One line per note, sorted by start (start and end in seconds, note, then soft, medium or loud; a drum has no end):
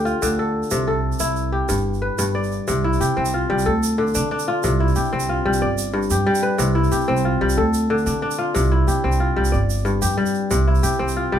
0.00 0.12 D2 medium
0.00 0.21 D3 medium
0.00 0.11 E4 medium
0.00 1.31 G4 medium
0.00 0.22 A4 medium
0.05 1.26 F4 medium
0.05 shaker soft
0.22 0.61 D2 medium
0.22 0.77 D3 medium
0.22 shaker medium
0.39 0.87 A4 medium
0.63 shaker soft
0.71 1.10 C2 medium
0.71 1.75 C3 medium
0.71 shaker medium
0.88 2.19 A4 medium
1.12 shaker soft
1.19 1.59 C2 medium
1.19 2.77 E4 medium
1.19 shaker medium
1.36 shaker soft
1.52 2.94 G4 medium
1.69 2.08 G1 medium
1.69 2.17 G2 medium
1.69 shaker medium
1.77 shaker soft
1.94 shaker soft
2.02 2.74 B4 medium
2.19 2.58 G1 medium
2.19 2.73 G2 medium
2.19 shaker medium
2.35 3.46 D5 medium
2.44 shaker soft
2.52 shaker soft
2.68 2.94 C2 loud
2.68 3.71 C3 medium
2.68 shaker medium
2.84 3.40 E4 medium
2.93 shaker soft
3.01 3.07 C3 medium
3.01 4.42 G4 medium
3.01 shaker medium
3.17 3.43 C2 medium
3.17 4.97 C4 medium
3.25 shaker medium
3.34 4.47 F4 medium
3.50 3.63 C2 medium
3.50 3.71 G3 medium
3.59 shaker medium
3.66 4.17 D2 medium
3.66 4.98 A4 medium
3.83 shaker medium
3.98 4.69 D3 medium
4.07 shaker soft
4.15 4.28 D3 medium
4.15 4.31 D4 medium
4.15 shaker medium
4.31 5.99 D4 medium
4.39 shaker medium
4.48 4.86 F4 medium
4.63 4.90 C2 loud
4.63 5.67 C3 medium
4.63 shaker medium
4.80 5.35 E4 medium
4.88 shaker soft
4.95 5.03 C3 medium
4.95 6.11 G4 medium
4.95 shaker medium
5.04 shaker soft
5.13 5.39 C2 medium
5.13 6.49 C4 medium
5.20 shaker medium
5.29 6.81 F4 medium
5.46 5.59 C2 medium
5.46 5.67 G3 medium
5.53 shaker medium
5.62 6.12 G1 medium
5.62 6.73 D5 medium
5.78 shaker medium
5.93 6.65 G2 medium
6.02 shaker soft
6.10 6.23 G2 medium
6.10 6.91 G4 medium
6.10 shaker medium
6.27 6.65 G3 medium
6.35 shaker medium
6.43 7.14 B4 medium
6.58 6.85 C2 loud
6.58 7.63 C3 medium
6.58 shaker medium
6.75 7.31 E4 medium
6.84 shaker soft
6.92 6.99 C3 medium
6.92 8.33 G4 medium
6.92 shaker medium
7.01 shaker soft
7.08 7.35 C2 medium
7.08 8.88 C4 medium
7.17 shaker medium
7.25 8.38 F4 medium
7.41 7.54 C2 medium
7.41 7.63 G3 medium
7.49 shaker medium
7.57 8.08 D2 medium
7.57 8.89 A4 medium
7.74 shaker medium
7.90 8.60 D3 medium
7.98 shaker soft
8.06 8.19 D3 medium
8.06 8.22 D4 medium
8.06 shaker medium
8.22 9.90 D4 medium
8.31 shaker soft
8.38 8.78 F4 medium
8.54 8.81 C2 loud
8.54 9.58 C3 medium
8.54 shaker medium
8.72 9.26 E4 medium
8.88 8.94 C3 medium
8.88 10.01 G4 medium
8.88 shaker medium
9.04 9.30 C2 medium
9.04 10.84 C4 medium
9.12 shaker medium
9.20 10.74 F4 medium
9.36 9.50 C2 medium
9.36 9.58 G3 medium
9.45 shaker medium
9.52 10.04 G1 medium
9.52 10.63 D5 medium
9.70 shaker medium
9.78 shaker soft
9.85 10.56 G2 medium
9.85 shaker soft
10.02 10.15 G2 medium
10.02 10.83 G4 medium
10.02 shaker medium
10.10 shaker soft
10.17 10.56 G3 medium
10.26 shaker medium
10.34 shaker soft
10.51 10.77 C2 loud
10.51 11.39 C3 medium
10.51 shaker medium
10.68 11.23 E4 medium
10.75 shaker soft
10.83 10.90 C3 medium
10.83 11.39 G4 medium
10.83 shaker medium
10.99 11.26 C2 medium
10.99 11.39 C4 medium
11.08 shaker medium
11.16 11.39 F4 medium
11.32 11.39 C2 medium
11.32 11.39 G3 medium